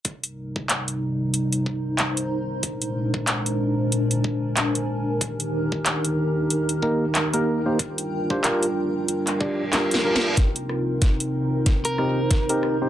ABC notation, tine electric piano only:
X:1
M:4/4
L:1/16
Q:"Swing 16ths" 1/4=93
K:Cm
V:1 name="Tine electric piano"
z16 | z16 | z8 z2 [B,EGB] z2 [B,EGB]2 [B,EGc] | z3 [DFGc] [DFGB] z4 z [DFGd] z [DFGB]2 [DFGB] z |
z8 z2 [CEGB] z2 [CEGB]2 [CEGc] |]